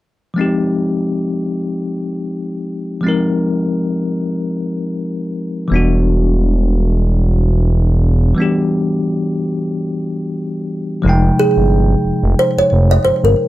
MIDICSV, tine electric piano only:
0, 0, Header, 1, 2, 480
1, 0, Start_track
1, 0, Tempo, 666667
1, 264, Time_signature, 4, 2, 24, 8
1, 9706, End_track
2, 0, Start_track
2, 0, Title_t, "Tine electric piano"
2, 0, Program_c, 0, 4
2, 244, Note_on_c, 0, 53, 50
2, 261, Note_on_c, 0, 56, 48
2, 272, Note_on_c, 0, 60, 53
2, 282, Note_on_c, 0, 63, 47
2, 295, Note_on_c, 0, 67, 57
2, 398, Control_c, 0, 64, 127
2, 2145, Note_off_c, 0, 53, 0
2, 2154, Note_off_c, 0, 56, 0
2, 2159, Note_off_c, 0, 60, 0
2, 2164, Note_off_c, 0, 63, 0
2, 2166, Note_on_c, 0, 53, 53
2, 2171, Note_off_c, 0, 67, 0
2, 2182, Note_on_c, 0, 56, 50
2, 2189, Note_on_c, 0, 60, 48
2, 2208, Note_on_c, 0, 63, 54
2, 2221, Note_on_c, 0, 70, 58
2, 4066, Note_off_c, 0, 53, 0
2, 4074, Note_off_c, 0, 56, 0
2, 4078, Note_off_c, 0, 60, 0
2, 4087, Note_off_c, 0, 63, 0
2, 4088, Note_on_c, 0, 52, 57
2, 4093, Note_off_c, 0, 70, 0
2, 4103, Note_on_c, 0, 55, 47
2, 4113, Control_c, 0, 64, 0
2, 4117, Note_on_c, 0, 59, 52
2, 4131, Note_on_c, 0, 62, 54
2, 4144, Note_on_c, 0, 66, 63
2, 4249, Control_c, 0, 64, 127
2, 5987, Note_off_c, 0, 52, 0
2, 5995, Note_off_c, 0, 55, 0
2, 6002, Note_off_c, 0, 59, 0
2, 6009, Note_off_c, 0, 62, 0
2, 6009, Note_on_c, 0, 52, 61
2, 6015, Note_off_c, 0, 66, 0
2, 6022, Note_on_c, 0, 55, 54
2, 6033, Note_on_c, 0, 59, 57
2, 6049, Note_on_c, 0, 62, 55
2, 6059, Note_on_c, 0, 67, 58
2, 7908, Note_off_c, 0, 52, 0
2, 7914, Note_off_c, 0, 55, 0
2, 7919, Note_off_c, 0, 59, 0
2, 7927, Note_off_c, 0, 62, 0
2, 7933, Note_off_c, 0, 67, 0
2, 7935, Note_on_c, 0, 53, 57
2, 7945, Note_on_c, 0, 56, 58
2, 7953, Control_c, 0, 64, 0
2, 7959, Note_on_c, 0, 48, 55
2, 7975, Note_on_c, 0, 63, 54
2, 7987, Note_on_c, 0, 79, 61
2, 8082, Control_c, 0, 64, 127
2, 9706, Note_off_c, 0, 48, 0
2, 9706, Note_off_c, 0, 53, 0
2, 9706, Note_off_c, 0, 56, 0
2, 9706, Note_off_c, 0, 63, 0
2, 9706, Note_off_c, 0, 79, 0
2, 9706, End_track
0, 0, End_of_file